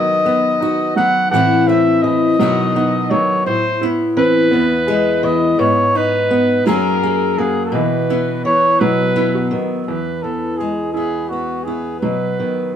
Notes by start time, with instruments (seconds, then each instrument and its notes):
Already playing: steel-string acoustic guitar D#3 B3 D#4 F#4, upright piano F#3 B3, flugelhorn D#5
0.25 upright piano B3, steel-string acoustic guitar B3
0.61 upright piano D#4, steel-string acoustic guitar F#4
0.96 upright piano F#3, steel-string acoustic guitar B3, flugelhorn F#5
1.31 steel-string acoustic guitar A2 E3 A3 C4, upright piano E3, flugelhorn F#5
1.36 steel-string acoustic guitar E4
1.67 steel-string acoustic guitar A3, upright piano C4, flugelhorn E5
2.02 upright piano E3, steel-string acoustic guitar E3, flugelhorn D#5
2.39 steel-string acoustic guitar B2 D#3 B3 D#4 F#4, upright piano F#3
2.75 steel-string acoustic guitar B3, upright piano D#4
3.10 steel-string acoustic guitar D#3, upright piano F#3, flugelhorn C#5
3.46 steel-string acoustic guitar A2, flugelhorn C5
3.81 steel-string acoustic guitar B3, upright piano E4
4.17 steel-string acoustic guitar E3, upright piano C4, flugelhorn B4
4.51 steel-string acoustic guitar E2, upright piano B3
4.87 steel-string acoustic guitar G#3, upright piano G#4
5.23 steel-string acoustic guitar E3, upright piano B3, flugelhorn D#5
5.59 steel-string acoustic guitar G#2, upright piano B3, flugelhorn C#5
5.95 upright piano D#4, steel-string acoustic guitar D#4, flugelhorn B4
6.30 upright piano B3, steel-string acoustic guitar B3
6.66 steel-string acoustic guitar F#2 F#3 A#3 C#4 G#4, upright piano F#3, flugelhorn A#4
7.03 steel-string acoustic guitar A#3, upright piano G#4
7.38 steel-string acoustic guitar F#3, upright piano A#3, flugelhorn G#4
7.66 flugelhorn A4
7.72 steel-string acoustic guitar B2, upright piano E3, flugelhorn B4
8.10 steel-string acoustic guitar B3, upright piano E4
8.45 steel-string acoustic guitar E3, upright piano B3, flugelhorn C#5
8.80 steel-string acoustic guitar B2, upright piano F#3, flugelhorn B4
9.16 steel-string acoustic guitar B3, upright piano E4
9.34 upright piano F#4
9.51 steel-string acoustic guitar D#3, upright piano B3
9.87 steel-string acoustic guitar E2, upright piano E3, flugelhorn B4
10.23 steel-string acoustic guitar E3, upright piano B3, flugelhorn A4
10.58 steel-string acoustic guitar G#3, flugelhorn G#4, upright piano G#4
10.93 upright piano E4, flugelhorn G#4
10.97 steel-string acoustic guitar B3
11.29 upright piano B3, steel-string acoustic guitar B3, flugelhorn F#4
11.64 steel-string acoustic guitar B3, upright piano E4, flugelhorn G#4
12.00 steel-string acoustic guitar B2, upright piano F#3, flugelhorn B4
12.38 steel-string acoustic guitar D#3, upright piano B3